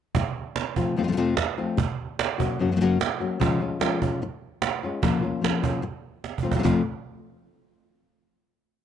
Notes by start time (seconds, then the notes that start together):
0.15 muted nylon-string guitar stroke, cajon bass
0.36 cajon slap
0.56 cajon slap
0.76 F3 A3 C4 F4, cajon bass
0.96 F2 C3 F3 A3 C4 F4
1.03 C3 F3 A3 C4 F4
1.08 C3 F3 A3 C4 F4
1.12 C3 F3 A3 C4 F4
1.17 F2 C3 F3 A3 C4 F4
1.37 muted nylon-string guitar stroke, cajon bass, cajon slap
1.58 F3 A3 C4 F4
1.77 muted nylon-string guitar stroke, cajon bass
1.99 cajon slap
2.19 cajon slap
2.38 F#3 A#3 C#4 F#4, cajon bass
2.59 F#2 C#3 F#3 A#3 C#4 F#4
2.71 C#3 F#3 A#3 C#4 F#4
2.76 C#3 F#3 A#3 C#4 F#4
2.81 F#2 C#3 F#3 A#3 C#4 F#4
3.00 muted nylon-string guitar stroke, cajon slap
3.20 F#3 A#3 C#4 F#4
3.40 C#3 F3 G#3 C#4 F4, cajon bass
3.60 G#3 C#4 F4, cajon slap
3.80 F3 G#3 C#4 F4, cajon slap
4.01 G#3 C#4 F4, cajon bass
4.22 muted nylon-string guitar stroke
4.62 cajon slap
4.83 G#3 C#4 F4
5.02 A#2 F3 A#3 C#4 F4, cajon bass
5.22 A#3 C#4 F4, cajon slap
5.41 F3 A#3 C#4 F4, cajon slap
5.63 A#3 C#4 F4, cajon bass
5.82 muted nylon-string guitar stroke
6.24 cajon slap
6.38 cajon bass
6.43 F3 A3 C4 F4
6.51 C3 F3 A3 C4, cajon bass
6.56 C3 F3 A3 C4 F4
6.60 F2 C3 F4
6.64 F3 A3 C4 F4, cajon bass